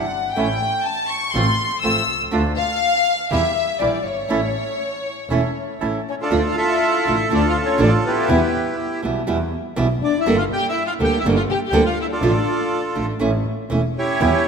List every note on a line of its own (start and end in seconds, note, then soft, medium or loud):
0.00 0.37 F#5 medium
0.12 0.36 G1 soft
0.33 0.58 A1 medium
0.33 0.46 E3 medium
0.33 0.46 A3 medium
0.33 0.47 C#4 medium
0.33 0.47 E4 medium
0.33 0.81 G5 medium
0.37 0.58 A3 medium
0.37 0.58 C#4 medium
0.37 0.59 E4 medium
0.84 1.10 A5 medium
1.08 1.34 C#6 medium
1.33 1.56 A1 loud
1.33 1.44 F3 medium
1.33 1.56 A3 medium
1.33 1.45 A3 medium
1.33 1.56 C4 medium
1.33 1.45 C4 medium
1.33 1.56 F4 medium
1.33 1.45 F4 medium
1.33 1.83 C6 medium
1.81 2.05 A1 medium
1.81 2.01 F3 medium
1.81 2.05 A3 medium
1.81 2.01 A3 medium
1.81 2.05 C4 medium
1.81 2.01 C4 medium
1.81 2.05 F4 medium
1.81 2.17 E6 medium
1.85 2.02 F4 medium
2.08 2.32 C2 medium
2.31 2.54 D2 loud
2.31 2.41 D3 medium
2.31 2.41 A3 medium
2.31 2.53 A3 medium
2.31 2.53 D4 medium
2.31 2.42 D4 medium
2.31 2.53 F4 medium
2.31 2.42 F4 medium
2.57 3.27 F5 loud
3.31 3.52 E2 medium
3.31 3.40 E3 medium
3.31 3.41 G3 medium
3.31 3.52 A#3 medium
3.31 3.52 E4 medium
3.31 3.41 E4 medium
3.31 3.52 G4 medium
3.31 3.81 E5 loud
3.79 4.02 A#1 medium
3.79 3.97 E3 medium
3.79 3.98 G3 medium
3.79 4.01 A#3 soft
3.79 4.02 E4 soft
3.79 3.98 E4 medium
3.79 4.02 G4 medium
3.79 4.05 D5 medium
4.04 4.29 G1 soft
4.04 5.80 C#5 medium
4.29 4.51 A1 medium
4.29 4.39 E3 medium
4.29 4.39 A3 medium
4.29 4.51 C#4 medium
4.29 4.39 C#4 medium
4.29 4.51 E4 medium
4.29 4.40 E4 medium
4.29 4.51 A4 medium
5.29 5.51 E1 medium
5.29 5.39 E3 medium
5.29 5.40 A3 medium
5.29 5.51 C#4 medium
5.29 5.40 C#4 medium
5.29 5.51 E4 medium
5.29 5.40 E4 medium
5.29 5.51 A4 medium
5.80 6.02 A1 medium
5.80 5.98 E3 medium
5.80 5.99 A3 medium
5.80 6.02 C#4 medium
5.80 5.98 C#4 medium
5.80 6.02 E4 soft
5.80 5.99 E4 medium
5.80 6.02 A4 medium
6.09 6.14 C#4 medium
6.09 6.15 C#5 medium
6.21 6.49 D4 medium
6.21 7.16 F4 medium
6.21 6.55 A4 medium
6.21 6.52 D5 medium
6.30 6.52 D2 medium
6.30 6.40 D3 medium
6.30 6.40 A3 medium
6.30 6.41 D4 medium
6.30 6.41 F4 loud
6.49 6.56 F4 medium
6.49 6.56 F5 medium
6.57 7.29 E4 medium
6.57 7.33 A4 medium
6.57 7.28 E5 loud
7.06 7.27 A1 medium
7.06 7.24 D3 medium
7.06 7.24 A3 medium
7.06 7.24 D4 medium
7.06 7.24 F4 medium
7.30 7.53 D2 loud
7.30 7.40 D3 medium
7.30 7.40 A3 medium
7.30 7.41 D4 medium
7.30 7.47 D4 medium
7.30 7.41 F4 medium
7.30 7.48 D5 medium
7.35 8.28 F4 medium
7.35 8.28 A4 medium
7.48 7.56 F4 medium
7.48 7.57 F5 medium
7.63 7.79 C#4 medium
7.63 7.81 C#5 medium
7.78 8.01 A1 loud
7.78 7.89 D3 medium
7.78 7.89 A3 loud
7.78 7.89 D4 loud
7.78 7.92 D4 medium
7.78 7.89 F4 medium
7.83 7.94 D5 medium
8.04 8.75 B3 medium
8.04 9.01 E4 medium
8.04 9.01 G4 medium
8.04 8.76 B4 medium
8.28 8.51 E2 medium
8.28 8.38 B2 medium
8.28 8.39 E3 medium
8.28 8.39 G3 medium
8.28 8.39 B3 medium
8.28 8.39 E4 medium
9.03 9.25 B1 medium
9.03 9.20 B2 medium
9.03 9.21 E3 medium
9.03 9.21 G3 medium
9.03 9.21 B3 medium
9.03 9.22 E4 medium
9.27 9.49 E2 loud
9.27 9.37 B2 medium
9.27 9.37 E3 medium
9.27 9.37 G3 loud
9.27 9.37 B3 loud
9.27 9.37 E4 medium
9.76 9.98 B1 medium
9.76 9.86 B2 medium
9.76 9.86 E3 medium
9.76 9.86 G3 medium
9.76 9.86 B3 loud
9.76 9.87 E4 medium
10.02 10.26 F1 medium
10.02 10.17 D4 medium
10.02 10.20 D5 medium
10.19 10.34 E4 medium
10.19 10.36 E5 medium
10.26 10.47 G1 loud
10.26 10.35 D3 medium
10.26 10.35 G3 medium
10.26 10.35 A#3 medium
10.26 10.36 D4 medium
10.26 10.36 A4 medium
10.35 10.42 F4 medium
10.35 10.45 F5 medium
10.53 10.67 G4 loud
10.53 10.67 G5 loud
10.69 10.84 E4 medium
10.69 10.83 E5 loud
10.85 10.92 F4 medium
10.85 10.93 F5 loud
11.00 11.20 D2 medium
11.00 11.17 D3 medium
11.00 11.17 G3 medium
11.00 11.17 A#3 medium
11.00 11.17 D4 medium
11.00 11.15 G4 medium
11.00 11.17 A4 medium
11.04 11.19 G5 loud
11.18 11.25 E4 medium
11.18 11.27 E5 medium
11.24 11.45 G1 loud
11.24 11.34 D3 medium
11.24 11.34 G3 medium
11.24 11.34 A#3 medium
11.24 11.34 D4 loud
11.24 11.34 A4 loud
11.36 11.42 F4 medium
11.36 11.43 F5 medium
11.50 11.57 G4 medium
11.50 11.60 G5 loud
11.67 11.81 G4 medium
11.67 11.84 G5 loud
11.72 11.93 D2 medium
11.72 11.82 D3 medium
11.72 11.82 G3 medium
11.72 11.82 A#3 medium
11.72 11.82 D4 loud
11.72 11.82 A4 medium
11.83 11.98 F4 medium
11.83 11.99 F5 medium
12.01 12.05 E4 medium
12.01 12.06 E5 medium
12.12 12.81 D4 medium
12.12 13.06 F4 medium
12.12 13.06 A4 medium
12.12 12.82 D5 medium
12.22 12.43 A1 loud
12.22 12.31 D3 medium
12.22 12.31 A3 medium
12.22 12.31 D4 medium
12.22 12.32 F4 medium
12.95 13.18 A1 medium
12.95 13.13 D3 medium
12.95 13.13 A3 medium
12.95 13.13 D4 medium
12.95 13.14 F4 medium
13.19 13.42 A1 loud
13.19 13.29 E3 medium
13.19 13.30 A3 medium
13.19 13.30 C#4 medium
13.19 13.30 E4 medium
13.70 13.92 E1 medium
13.70 13.80 E3 medium
13.70 13.80 A3 medium
13.70 13.80 C#4 medium
13.70 13.81 E4 medium
13.97 14.48 C#4 medium
13.97 14.48 E4 medium
13.97 14.48 G4 medium
13.97 14.48 C#5 medium
14.20 14.42 E2 loud
14.20 14.30 B2 medium
14.20 14.30 E3 medium
14.20 14.30 G3 medium
14.20 14.42 B3 medium
14.20 14.31 B3 medium
14.20 14.42 E4 medium
14.20 14.31 E4 medium
14.20 14.42 G4 medium